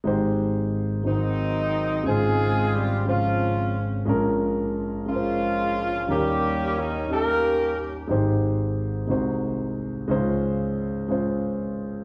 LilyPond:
<<
  \new Staff \with { instrumentName = "Grand piano" } { \time 6/8 \key aes \major \tempo 4. = 60 <aes ees' g' c''>4 r8 <aes ees' ges' c''>4 r8 | <des aes f' c''>4 r8 <des aes f' c''>4 r8 | <aes des' f' bes'>4 r8 <aes des' f' bes' c''>4 r8 | <g des' ees' bes'>4 r8 <g des' ees' g'>4 r8 |
<aes ees' g' c''>4 r8 <aes ees' ges' c''>4 r8 | <aes des' ees' f' c''>4 r8 <aes des' f' c''>4 r8 | }
  \new Staff \with { instrumentName = "Grand piano" } { \clef bass \time 6/8 \key aes \major <aes,, aes,>4. <aes,, aes,>4. | <aes,, aes,>2. | <bes,, bes,>2. | <ees, ees>2. |
<aes,, aes,>4. <c, c>4. | <des, des>2. | }
  \new Staff \with { instrumentName = "Horn section" } { \time 6/8 \key aes \major << { r4. <ees ees'>4. | <aes aes'>4 <g g'>8 <f f'>4 r8 | r4. <f f'>4. | <g g'>4 <ees ees'>8 <bes bes'>4 r8 |
r2. | r2. | } \\ { r4. <ges c'>4. | <c' f'>4. <c' des'>4. | r4. <aes des'>4. | <bes des'>4. <des' g'>4. |
r2. | r2. | } >> }
>>